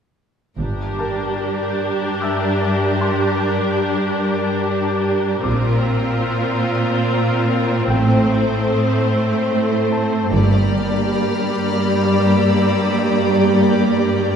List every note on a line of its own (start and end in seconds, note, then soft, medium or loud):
0.58 1.36 G1 soft
0.58 5.41 G2 soft
0.58 5.41 D4 soft
0.58 5.42 G4 soft
0.58 5.41 A#4 soft
0.99 3.39 A#4 soft
0.99 3.38 A5 soft
2.22 4.61 E5 soft
2.22 4.61 E6 soft
3.01 5.41 C6 soft
5.44 6.22 A#1 soft
5.44 7.84 A#2 soft
5.44 10.32 C4 soft
5.44 7.89 F4 soft
5.44 7.84 A#4 soft
5.44 9.87 A#5 soft
5.44 7.84 D6 soft
5.44 8.17 E6 soft
7.88 8.66 A1 soft
7.88 10.27 A2 soft
7.88 10.32 A3 soft
7.88 10.28 C5 soft
7.88 10.28 G5 soft
8.17 9.06 D#6 soft
9.92 12.31 A5 soft
10.31 11.09 G1 soft
10.31 14.36 G2 medium
10.31 14.36 A#3 soft
10.31 14.36 G4 soft
10.31 14.36 D5 soft
10.31 14.36 A#5 soft
10.31 13.93 B5 soft
10.31 12.42 F6 soft
12.42 13.12 E6 soft